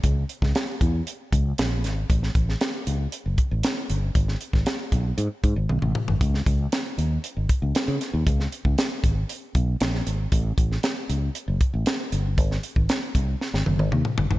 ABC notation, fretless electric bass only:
X:1
M:4/4
L:1/16
Q:1/4=117
K:C#m
V:1 name="Fretless electric bass" clef=bass
C,,2 z C,, z2 E,,2 z2 C,,2 ^A,,,2 G,,,2 | A,,,2 A,,,2 z2 C,,2 z F,,, z A,,, z2 =G,,,2 | G,,,2 z G,,, z2 B,,,2 G,, z G,, G,,, B,,, A,,, z G,,, | C,,2 C,,2 z2 D,,2 z G,,, z C,, z C, z D,, |
C,,2 z C,, z2 G,,,2 z2 B,,,2 ^A,,,2 G,,,2 | A,,,2 A,,,2 z2 C,,2 z F,,, z A,,, z2 =G,,,2 | G,,,2 z G,,, z2 ^B,,,2 z G,,, F,,, G,,, D,, z =G,,, ^G,,, |]